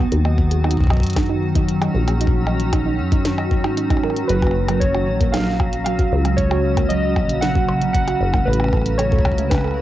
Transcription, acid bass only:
0.12 D#2
0.90 F#2
1.95 A#1
2.99 F#2
3.64 G#2
4.29 F#1
5.08 A#1
6.12 C#2
7.16 A#1
8.21 F#1
8.47 A1
9.25 C#2

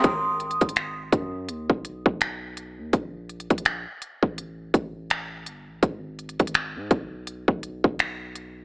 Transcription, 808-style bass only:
0.04 G#1
0.61 G#1
1.12 F#2
1.49 D#2
1.70 B1
2.06 B1
2.78 D#2
2.93 A#1
3.50 A#1
4.23 A1
4.74 A1
5.46 G1
5.68 A1
5.83 G#1
6.40 G#1
6.75 G#2
6.91 B1
7.48 B1
7.84 B1

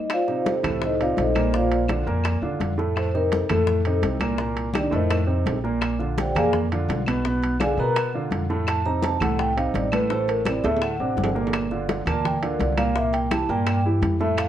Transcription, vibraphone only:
0.13 F4 C5 D5 F5
0.48 C4 G4 A4 C5
0.85 D#4 A4 C5 D#5
1.02 F4 C5 D5 F5
1.20 D#4 A4 C5 D#5
1.55 F4 C5 D5 F5
2.97 C5
3.15 A#4
3.33 A4
3.51 A4
4.77 D4 D5
4.94 D#4 A#4 C5 D#5
6.20 G4 C5 D5 G5
6.36 G#4 D5 F5 G#5
7.62 G#4 D5 F5 G#5
7.80 A#4 A#5
8.69 A5
8.86 A#5
9.04 A5
9.23 F#5
9.39 G5
9.58 F5
9.75 D5
9.93 B4
10.11 C5
10.28 A#4
10.47 D5
10.64 E5
10.83 F#5
12.09 A5
12.25 G5
12.43 A#4
12.61 D5
12.78 F5
12.96 E5
13.13 G5
13.31 A5
13.50 G5
14.21 E5
14.39 F5

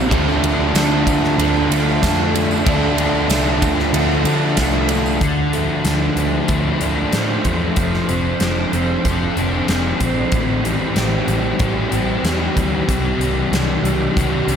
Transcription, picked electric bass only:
0.11 D2
0.43 D2
0.74 D2
1.38 D2
1.70 D2
2.02 F2
2.67 D2
3.29 C2
3.62 D2
3.93 D2
4.25 D3
4.57 C2
5.21 D2
5.85 D2
6.16 D2
6.49 D2
6.80 D2
7.13 A2
7.45 E2
7.76 F1
8.08 F1
8.40 F1
8.73 F1
9.05 F1
9.37 F1
9.69 F1
10.00 A#1
10.32 A1
10.96 A1
11.28 A1
11.59 A1
11.92 A1
12.23 E2
12.56 D2
12.88 C2
13.18 C2
13.51 C2
13.83 C2
14.17 C2
14.48 C2

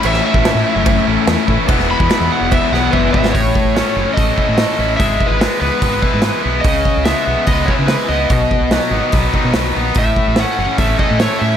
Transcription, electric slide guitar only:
0.07 E5
0.26 E5
1.91 B5
2.32 F#5
2.53 E5
2.73 F#5
2.91 B4 E5
3.13 E5
3.31 C#5
4.14 D#5
4.97 E5
5.27 B4
5.61 B4
6.61 D#5
7.05 E5
7.47 D#5
7.66 C#5
7.87 B4
8.08 D#5
9.99 E5
10.40 F#5
10.79 E5
10.99 D#5
11.20 C#5
11.39 E5

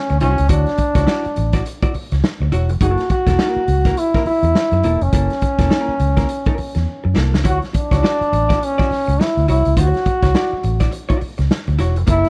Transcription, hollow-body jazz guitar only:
0.10 muted hollow-body jazz guitar stroke
0.21 E4 F#4 C#5
0.38 muted hollow-body jazz guitar stroke
0.49 E4 F#4 C#5
0.78 muted hollow-body jazz guitar stroke
0.95 E4 F#4 C#5
1.07 E4 F#4 D5
1.36 muted hollow-body jazz guitar stroke
1.54 E4 F#4 D5
1.66 muted hollow-body jazz guitar stroke
1.83 E4 F#4 D5
1.94 muted hollow-body jazz guitar stroke
2.12 muted hollow-body jazz guitar stroke
2.42 muted hollow-body jazz guitar stroke
2.52 E4 F#4 C#5
2.70 muted hollow-body jazz guitar stroke
2.81 A#3 E4 A4
3.10 muted hollow-body jazz guitar stroke
3.28 A#3 E4 A4
3.39 A#3 E4 A#4
3.68 muted hollow-body jazz guitar stroke
3.86 A#3 E4 A#4
3.98 muted hollow-body jazz guitar stroke
4.15 A#3 E4 A#4
4.27 muted hollow-body jazz guitar stroke
4.45 muted hollow-body jazz guitar stroke
4.73 muted hollow-body jazz guitar stroke
4.84 A#3 E4 A4
5.01 muted hollow-body jazz guitar stroke
5.13 A#3 E4 A4
5.42 muted hollow-body jazz guitar stroke
5.59 A#3 E4 A4
5.70 A#3 E4 A#4
6.00 muted hollow-body jazz guitar stroke
6.17 A#3 E4 A#4
6.29 muted hollow-body jazz guitar stroke
6.47 A#3 E4 A#4
6.58 muted hollow-body jazz guitar stroke
6.75 muted hollow-body jazz guitar stroke
7.04 muted hollow-body jazz guitar stroke
7.15 A#3 E4 A4
7.33 muted hollow-body jazz guitar stroke
7.44 E4 F#4 C#5
7.73 muted hollow-body jazz guitar stroke
7.92 E4 F#4 C#5
8.03 E4 F#4 D5
8.33 muted hollow-body jazz guitar stroke
8.49 E4 F#4 D5
8.60 muted hollow-body jazz guitar stroke
8.78 E4 F#4 D5
8.90 muted hollow-body jazz guitar stroke
9.08 muted hollow-body jazz guitar stroke
9.20 muted hollow-body jazz guitar stroke
9.48 E4 F#4 C#5
9.66 muted hollow-body jazz guitar stroke
9.77 E4 F#4 C#5
10.07 muted hollow-body jazz guitar stroke
10.23 E4 F#4 C#5
10.35 E4 F#4 D5
10.63 muted hollow-body jazz guitar stroke
10.80 E4 F#4 D5
10.92 muted hollow-body jazz guitar stroke
11.09 E4 F#4 D5
11.20 muted hollow-body jazz guitar stroke
11.38 muted hollow-body jazz guitar stroke
11.68 muted hollow-body jazz guitar stroke
11.79 E4 F#4 C#5
11.96 muted hollow-body jazz guitar stroke
12.07 A#3 E4 A4

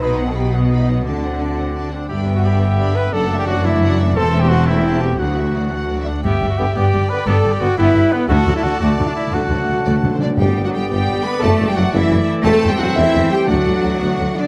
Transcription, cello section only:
0.02 B2
1.06 D3
2.11 G2
3.12 F#2
4.16 E2
5.20 D2
6.24 G2
6.42 G2
6.59 G2
6.77 G2
6.94 G2
7.28 G2
7.45 G2
7.62 G2
7.78 G2
7.94 G2
8.30 D2
8.47 D2
8.64 D2
8.81 D2
8.98 D2
9.32 D2
9.50 D2
9.68 D2
9.85 D2
10.04 D2
10.22 D3
10.39 G3
10.66 F#3
10.74 G3
10.91 G3
11.25 B3
11.43 A3
11.69 G3
11.77 F#3
11.94 E3
12.45 A3
12.70 G3
12.79 F#3
12.96 E3
13.31 G3
13.49 F#3
14.36 D3

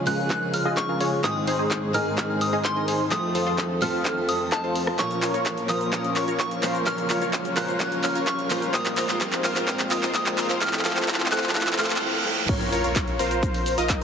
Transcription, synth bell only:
0.07 F#6
0.54 F6
0.77 C#6
1.24 D#6
1.94 F6
2.41 D#6
2.65 C6
3.12 D#6
3.82 F6
4.29 D#6
4.52 A5
4.99 C#6
5.69 D#6
6.16 C#6
6.40 C#6
6.87 F6
7.57 F#6
8.04 F6
8.27 C#6
8.74 D#6
9.45 F6
9.91 D#6
10.15 D#6
10.61 F6
11.32 F#6
11.79 F6

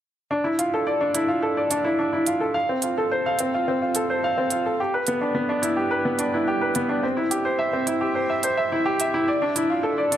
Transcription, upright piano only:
0.31 D4
0.44 E4
0.59 F4
0.74 A4
0.87 D5
1.01 D4
1.14 E4
1.28 F4
1.42 A4
1.57 D5
1.71 D4
1.85 E4
1.99 D4
2.13 E4
2.27 F4
2.40 A4
2.54 F5
2.69 C4
2.83 F4
2.98 A4
3.11 C5
3.26 F5
3.40 C4
3.54 F4
3.68 C4
3.82 F4
3.96 A4
4.10 C5
4.24 F5
4.38 C4
4.52 F4
4.66 A4
4.80 G4
4.94 B4
5.08 B3
5.21 D4
5.35 B3
5.49 D4
5.62 E4
5.77 G4
5.91 B4
6.05 B3
6.19 D4
6.34 E4
6.48 G4
6.61 B4
6.76 B3
6.89 D4
7.03 C4
7.17 E4
7.31 G4
7.45 C5
7.59 E5
7.73 C4
7.87 E4
8.01 G4
8.15 C5
8.30 E5
8.44 C5
8.57 E5
8.72 E4
8.86 G4
9.00 E5
9.14 E4
9.28 D5
9.42 D4
9.56 E4
9.70 F4
9.83 A4
9.98 D5
10.12 D4

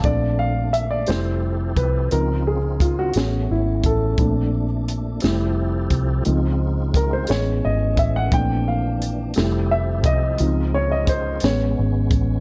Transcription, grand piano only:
Already playing: F5 A5
0.04 A3 C4 D4 D5
0.39 F5
0.73 E5
0.91 D5
1.07 G3 A3 E4 C5
1.77 B4
2.11 F3 C4 D#4 A#4
2.47 G#4
2.81 F4
2.99 F#4
3.16 B3 C#4 G#4
3.51 E4
3.86 A4
4.19 A3 C4 D4
5.22 G3 A3 E4
6.25 F3 C4 D#4
6.96 A#4
7.13 C5
7.29 G#3 B3 C#4 C#5
7.65 D#5
7.99 E5
8.16 F#5
8.33 A3 C4 D4 G5
8.68 F5
9.36 G3 A3 E4
9.71 E5
10.06 D#5
10.40 F3 C4 D#4
10.74 C#5
10.92 D#5
11.09 C5
11.44 G#3 B3 C#4 C#5

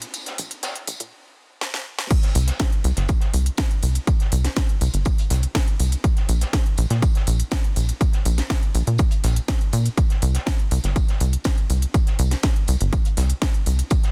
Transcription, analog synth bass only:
0.38 A#1
0.88 A#1
1.00 A#2
2.35 C2
2.84 C2
2.97 G1
3.34 C2
3.83 C2
4.32 C2
4.81 C2
4.94 G1
5.30 C2
5.80 C2
6.29 A#1
6.78 A#1
6.90 A#2
7.27 A#1
7.76 A#1
8.25 A#1
8.75 A#1
8.87 A#2
9.24 A#1
9.73 A#2
10.22 C2
10.71 C2
10.84 G1
11.20 C2
11.70 C2
12.19 C2
12.68 C2
12.81 G1
13.17 C2
13.66 C2

